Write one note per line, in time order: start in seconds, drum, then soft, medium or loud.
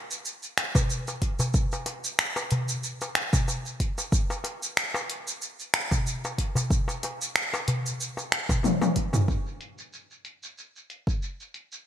0.11 shaker medium
0.25 shaker medium
0.43 shaker soft
0.58 finger snap medium
0.58 closed hi-hat medium
0.75 kick loud
0.75 darbuka tek medium
0.75 darbuka dum loud
0.75 shaker medium
0.90 shaker medium
1.07 darbuka tek medium
1.07 shaker soft
1.22 kick medium
1.22 closed hi-hat medium
1.39 darbuka ka medium
1.39 darbuka dum medium
1.39 shaker medium
1.54 kick loud
1.54 shaker medium
1.72 darbuka tek medium
1.72 shaker soft
1.86 closed hi-hat medium
1.86 darbuka ka medium
2.04 shaker medium
2.19 finger snap medium
2.19 shaker soft
2.36 darbuka ka soft
2.36 darbuka tek medium
2.36 shaker soft
2.51 closed hi-hat medium
2.51 darbuka dum medium
2.69 shaker medium
2.83 shaker medium
3.01 darbuka ka medium
3.01 shaker soft
3.15 finger snap medium
3.15 closed hi-hat medium
3.33 kick loud
3.33 darbuka tek medium
3.33 darbuka dum medium
3.33 shaker medium
3.48 darbuka ka medium
3.48 shaker medium
3.66 shaker soft
3.80 kick medium
3.80 closed hi-hat medium
3.98 darbuka ka medium
3.98 shaker medium
4.12 kick loud
4.12 shaker medium
4.30 darbuka tek medium
4.30 shaker soft
4.44 closed hi-hat medium
4.44 darbuka ka medium
4.63 shaker medium
4.77 finger snap medium
4.77 shaker soft
4.94 darbuka tek medium
4.94 shaker soft
5.10 closed hi-hat medium
5.28 shaker medium
5.42 shaker medium
5.60 shaker soft
5.74 finger snap medium
5.74 closed hi-hat medium
5.91 kick loud
5.91 darbuka tek medium
5.91 darbuka dum medium
5.91 shaker medium
6.07 shaker medium
6.24 darbuka tek medium
6.24 shaker soft
6.38 kick medium
6.38 closed hi-hat medium
6.55 darbuka ka medium
6.55 darbuka dum loud
6.55 shaker medium
6.71 kick loud
6.71 shaker medium
6.88 darbuka tek medium
6.88 shaker soft
7.03 closed hi-hat loud
7.03 darbuka ka medium
7.03 darbuka tek soft
7.22 shaker medium
7.36 finger snap medium
7.36 shaker medium
7.53 darbuka ka soft
7.53 darbuka tek medium
7.53 shaker soft
7.68 closed hi-hat loud
7.68 darbuka dum medium
7.86 shaker medium
8.01 shaker medium
8.17 darbuka ka medium
8.17 shaker soft
8.32 finger snap medium
8.32 closed hi-hat medium
8.49 kick loud
8.49 darbuka tek medium
8.49 darbuka dum medium
8.49 shaker medium
8.63 high tom medium
8.63 darbuka ka medium
8.63 shaker medium
8.81 high tom medium
8.81 darbuka tek medium
8.81 shaker soft
8.96 kick medium
8.96 closed hi-hat medium
9.13 mid tom medium
9.13 darbuka ka medium
9.13 shaker medium
9.28 kick medium
9.28 shaker soft
9.46 shaker soft
9.61 closed hi-hat medium
9.78 shaker medium
9.93 shaker soft
10.11 shaker soft
10.25 closed hi-hat medium
10.43 shaker medium
10.58 shaker soft
10.76 shaker soft
10.90 closed hi-hat medium
11.07 kick medium
11.07 shaker medium
11.22 shaker medium
11.40 shaker soft
11.54 closed hi-hat medium
11.72 shaker medium